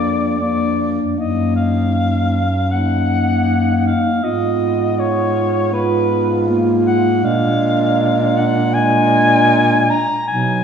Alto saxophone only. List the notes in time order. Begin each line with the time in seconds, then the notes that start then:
Already playing: D4
0.41 D4
1.18 D#4
2.72 D#4
4.23 F4
5.74 F4
7.23 D4
8.74 D4
10.28 D#4